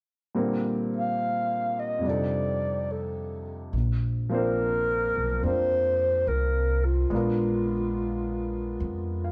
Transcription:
0.35 A#2 D3 G3 C4 A#4
0.96 F5
1.79 D#5
1.99 F2 C3 G3
2.06 D4 D#4 D5
2.10 A4
2.92 A4
3.73 A#1
4.29 F3 A#3 C4 D4
4.33 A#4 C5
5.15 B1
5.43 F2 C4 D4 F4 A#4 C5
6.27 C2 A#4
6.85 F4
7.10 A#1 G#3 B3 D4 F4
7.15 A#4
8.80 F2
9.24 F5

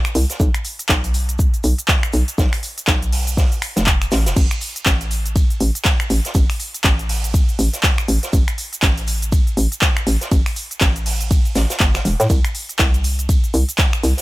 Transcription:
0.05 finger snap, cabasa
0.15 C2, open hi-hat, shaker
0.30 snare, closed hi-hat, cabasa
0.40 B1, kick, cabasa, shaker
0.54 finger snap, closed hi-hat, cabasa
0.65 open hi-hat, shaker
0.79 closed hi-hat, cabasa
0.89 B1, kick, snare, clap, cabasa, shaker
1.04 closed hi-hat, cabasa
1.14 open hi-hat, shaker
1.29 closed hi-hat, cabasa
1.39 kick, cabasa, shaker
1.54 closed hi-hat, cabasa
1.64 B1, open hi-hat, shaker
1.78 closed hi-hat, cabasa
1.88 kick, snare, clap, cabasa, shaker
2.03 finger snap, cabasa
2.13 B1, open hi-hat, shaker
2.28 closed hi-hat, cabasa
2.38 B1, kick, snare, cabasa, shaker
2.53 finger snap, closed hi-hat, open hi-hat, cabasa
2.63 open hi-hat, shaker
2.78 closed hi-hat, cabasa
2.87 B1, kick, snare, clap, cabasa, shaker
3.02 closed hi-hat, cabasa
3.12 open hi-hat
3.27 closed hi-hat, cabasa
3.37 kick, snare, cabasa, shaker
3.52 closed hi-hat, cabasa
3.62 finger snap, open hi-hat, shaker
3.76 F1, snare, closed hi-hat, cabasa, shaker
3.86 kick, clap, cabasa
4.02 finger snap, closed hi-hat, cabasa, shaker
4.11 A1, snare, open hi-hat, shaker
4.26 F1, snare, closed hi-hat, cabasa, shaker
4.36 A1, kick, ride, crash, cabasa, shaker
4.51 finger snap, closed hi-hat, cabasa
4.61 open hi-hat, shaker
4.76 closed hi-hat, cabasa
4.86 A1, kick, snare, clap, ride, cabasa, shaker
5.01 closed hi-hat, cabasa
5.11 open hi-hat, shaker
5.26 closed hi-hat, cabasa
5.36 kick, ride, cabasa, shaker
5.50 closed hi-hat, cabasa
5.60 A1, open hi-hat, shaker
5.75 closed hi-hat, cabasa
5.84 kick, snare, clap, ride, cabasa, shaker
6.00 finger snap, cabasa
6.10 A1, open hi-hat, shaker
6.25 snare, closed hi-hat, cabasa
6.34 A1, kick, ride, cabasa, shaker
6.50 finger snap, open hi-hat, cabasa
6.60 open hi-hat, shaker
6.74 closed hi-hat, cabasa
6.84 A1, kick, snare, clap, ride, cabasa, shaker
6.99 closed hi-hat, cabasa
7.09 open hi-hat
7.24 closed hi-hat, cabasa
7.34 kick, ride, cabasa, shaker
7.49 closed hi-hat, cabasa
7.59 A1, open hi-hat, shaker
7.73 snare, closed hi-hat, cabasa
7.83 kick, snare, clap, ride, cabasa, shaker
7.98 finger snap, cabasa
8.08 A1, open hi-hat, shaker
8.23 snare, closed hi-hat, cabasa
8.33 A1, kick, ride, cabasa, shaker
8.48 finger snap, closed hi-hat, cabasa
8.58 open hi-hat, shaker
8.73 closed hi-hat, cabasa
8.82 A1, kick, snare, clap, ride, cabasa, shaker
8.97 closed hi-hat, cabasa
9.07 open hi-hat, shaker
9.22 closed hi-hat, cabasa
9.32 kick, ride, cabasa, shaker
9.47 closed hi-hat, cabasa
9.57 A1, open hi-hat, shaker
9.72 closed hi-hat, cabasa
9.81 kick, snare, clap, ride, cabasa, shaker
9.97 finger snap, cabasa
10.07 A1, open hi-hat, shaker
10.21 snare, closed hi-hat, cabasa
10.31 A1, kick, ride, cabasa, shaker
10.46 finger snap, open hi-hat, cabasa
10.56 open hi-hat, shaker
10.71 closed hi-hat, cabasa
10.81 A1, kick, snare, clap, ride, cabasa, shaker
10.96 closed hi-hat, cabasa
11.06 open hi-hat
11.21 closed hi-hat, cabasa
11.31 kick, ride, cabasa, shaker
11.45 closed hi-hat, cabasa
11.55 A1, snare, open hi-hat, shaker
11.70 snare, closed hi-hat, cabasa, shaker
11.80 G1, kick, snare, clap, ride, cabasa, shaker
11.94 finger snap, snare, cabasa, shaker
12.05 E1, open hi-hat, shaker
12.20 A2, snare, closed hi-hat, cabasa
12.30 C2, kick, ride, cabasa, shaker
12.45 finger snap, closed hi-hat, cabasa
12.55 open hi-hat, shaker
12.69 closed hi-hat, cabasa
12.78 C2, kick, snare, clap, ride, cabasa, shaker
12.94 closed hi-hat, cabasa
13.04 open hi-hat, shaker
13.19 closed hi-hat, cabasa
13.29 kick, ride, cabasa, shaker
13.44 closed hi-hat, cabasa
13.54 C2, open hi-hat, shaker
13.69 closed hi-hat, cabasa
13.78 kick, snare, clap, ride, cabasa, shaker
13.93 finger snap, cabasa
14.03 C2, open hi-hat, shaker
14.17 snare, closed hi-hat

